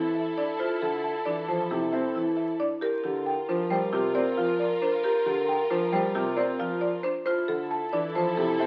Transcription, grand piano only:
0.00 0.22 E3 medium
0.82 1.11 D3 medium
1.26 1.55 E3 medium
1.48 1.77 F3 medium
1.71 1.99 C3 medium
1.93 2.22 C4 medium
2.15 2.44 E3 medium
3.04 3.33 D3 medium
3.49 3.77 F3 medium
3.70 3.99 G3 medium
3.92 4.22 C3 medium
4.15 4.44 C4 medium
4.37 4.66 F3 medium
5.26 5.55 D3 medium
5.70 5.99 F3 medium
5.92 6.22 G3 medium
6.15 6.44 C3 medium
6.37 6.66 C4 medium
6.59 6.88 F3 medium
7.48 7.77 D3 medium
7.93 8.22 E3 medium
8.15 8.44 F3 medium
8.37 8.66 C3 medium
8.59 8.66 C4 medium

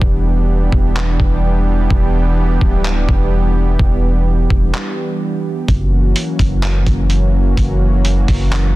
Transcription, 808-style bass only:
0.02 0.70 E1 loud
0.72 1.18 E1 loud
1.20 1.88 E1 loud
1.90 2.58 E1 loud
2.61 3.07 D1 loud
3.09 3.77 E1 loud
3.79 4.47 E1 loud
4.50 4.73 E1 loud
5.68 6.14 F#1 loud
6.39 6.85 F#1 loud
6.87 7.55 F#1 loud
7.57 8.25 F#1 loud
8.28 8.74 F#1 loud

